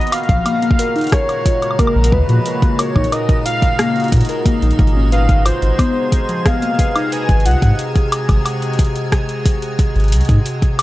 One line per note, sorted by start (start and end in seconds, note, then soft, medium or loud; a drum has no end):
0.00 5.08 A#2 medium
0.00 5.08 C#3 medium
0.00 10.42 G#3 medium
0.00 10.82 F#4 medium
0.00 0.14 D#5 loud
0.00 2.43 F5 medium
0.00 10.82 A#5 medium
0.00 closed hi-hat soft
0.07 closed hi-hat soft
0.12 1.14 F5 loud
0.12 closed hi-hat medium
0.12 high woodblock medium
0.23 closed hi-hat soft
0.29 0.39 A#1 loud
0.29 0.41 F3 medium
0.29 kick loud
0.29 closed hi-hat soft
0.46 0.58 A#3 medium
0.46 closed hi-hat medium
0.46 high woodblock medium
0.62 0.74 A#3 medium
0.62 closed hi-hat soft
0.71 kick loud
0.79 0.95 A#4 medium
0.79 closed hi-hat loud
0.96 1.03 D#4 loud
0.96 closed hi-hat soft
0.98 closed hi-hat soft
1.01 closed hi-hat soft
1.04 closed hi-hat soft
1.07 closed hi-hat soft
1.10 kick loud
1.10 cross-stick loud
1.10 closed hi-hat soft
1.12 1.28 A#4 medium
1.12 1.81 C#5 loud
1.12 closed hi-hat medium
1.29 1.36 A#4 medium
1.29 closed hi-hat soft
1.29 high woodblock soft
1.46 1.61 F4 medium
1.46 kick loud
1.46 closed hi-hat loud
1.62 closed hi-hat soft
1.62 high woodblock soft
1.71 high woodblock soft
1.79 1.95 A#3 medium
1.79 2.14 A#4 loud
1.79 kick loud
1.79 closed hi-hat medium
1.79 high woodblock medium
1.87 high woodblock medium
1.96 2.14 A#1 loud
2.04 closed hi-hat loud
2.12 2.22 D#2 loud
2.12 2.81 B4 loud
2.12 kick loud
2.29 2.39 A#2 medium
2.29 2.41 F3 medium
2.29 closed hi-hat soft
2.46 2.58 A#3 medium
2.46 5.10 D#4 medium
2.46 closed hi-hat medium
2.62 2.74 A#3 medium
2.62 kick loud
2.62 closed hi-hat soft
2.79 2.95 A#4 medium
2.79 3.14 C#5 medium
2.79 closed hi-hat medium
2.79 high woodblock medium
2.96 3.06 A#1 loud
2.96 3.03 D#4 loud
2.96 kick loud
2.96 high woodblock soft
3.04 closed hi-hat soft
3.12 3.28 A#4 medium
3.12 3.45 D#5 loud
3.12 closed hi-hat medium
3.12 high woodblock medium
3.29 3.36 A#4 medium
3.29 kick loud
3.29 closed hi-hat soft
3.46 3.61 F4 medium
3.46 4.08 F5 loud
3.46 closed hi-hat medium
3.62 kick loud
3.62 closed hi-hat soft
3.79 3.95 A#3 medium
3.79 cross-stick loud
3.79 closed hi-hat medium
3.96 closed hi-hat soft
4.00 closed hi-hat soft
4.04 closed hi-hat soft
4.08 closed hi-hat soft
4.12 4.22 A#2 medium
4.12 kick loud
4.12 closed hi-hat medium
4.16 closed hi-hat soft
4.21 closed hi-hat soft
4.25 closed hi-hat soft
4.29 4.41 A#4 medium
4.29 closed hi-hat soft
4.46 4.61 A#3 loud
4.46 kick loud
4.46 closed hi-hat medium
4.62 4.72 A#1 medium
4.62 4.78 D#4 medium
4.62 closed hi-hat soft
4.71 closed hi-hat soft
4.79 5.52 G#1 medium
4.79 4.86 A#3 loud
4.79 kick loud
4.79 closed hi-hat soft
4.87 closed hi-hat soft
4.96 5.03 C#4 medium
5.12 10.42 C3 medium
5.12 10.42 G#4 medium
5.12 5.28 B4 medium
5.12 5.43 F5 medium
5.12 closed hi-hat medium
5.29 5.36 B4 medium
5.29 kick loud
5.29 closed hi-hat soft
5.46 5.61 F4 medium
5.46 6.47 C5 medium
5.46 closed hi-hat medium
5.46 high woodblock medium
5.62 5.72 G#1 loud
5.62 5.70 D#4 medium
5.62 closed hi-hat soft
5.79 5.95 B3 medium
5.79 kick loud
5.79 closed hi-hat medium
5.79 high woodblock medium
6.12 kick loud
6.12 closed hi-hat medium
6.29 6.41 F3 medium
6.29 closed hi-hat soft
6.46 6.58 B3 medium
6.46 7.14 F5 loud
6.46 kick loud
6.46 cross-stick loud
6.46 closed hi-hat medium
6.62 6.74 A#3 medium
6.62 closed hi-hat soft
6.79 6.95 B4 medium
6.79 kick loud
6.79 closed hi-hat medium
6.96 7.03 D#4 loud
6.96 closed hi-hat soft
6.96 high woodblock medium
7.12 7.28 B4 medium
7.12 7.47 G#5 loud
7.12 closed hi-hat medium
7.29 7.47 G#1 loud
7.29 7.36 B4 medium
7.29 kick loud
7.29 closed hi-hat soft
7.40 closed hi-hat soft
7.46 7.56 C2 loud
7.46 7.61 F4 medium
7.46 7.79 F#5 loud
7.46 closed hi-hat medium
7.62 7.72 G#2 medium
7.62 7.69 D#4 medium
7.62 kick loud
7.62 closed hi-hat soft
7.79 closed hi-hat medium
7.96 kick loud
7.96 closed hi-hat soft
8.12 closed hi-hat medium
8.12 high woodblock medium
8.29 8.39 G#1 loud
8.29 kick loud
8.29 closed hi-hat soft
8.29 high woodblock soft
8.46 closed hi-hat medium
8.46 high woodblock medium
8.62 closed hi-hat soft
8.73 closed hi-hat soft
8.79 kick loud
8.79 closed hi-hat medium
8.85 closed hi-hat soft
8.96 closed hi-hat soft
9.12 kick loud
9.12 cross-stick loud
9.12 closed hi-hat medium
9.29 closed hi-hat soft
9.46 kick loud
9.46 closed hi-hat medium
9.62 closed hi-hat soft
9.79 kick loud
9.79 closed hi-hat medium
9.96 10.14 G#1 loud
9.96 closed hi-hat soft
10.00 closed hi-hat soft
10.04 closed hi-hat soft
10.08 closed hi-hat soft
10.12 10.22 C2 loud
10.12 closed hi-hat medium
10.21 closed hi-hat soft
10.25 closed hi-hat soft
10.29 10.39 G#2 medium
10.29 kick loud
10.29 closed hi-hat soft
10.46 10.82 C#3 medium
10.46 10.82 F#3 medium
10.46 10.82 A#3 medium
10.46 10.82 F#4 medium
10.46 closed hi-hat medium
10.62 kick loud
10.62 closed hi-hat soft
10.79 closed hi-hat medium
10.79 high woodblock medium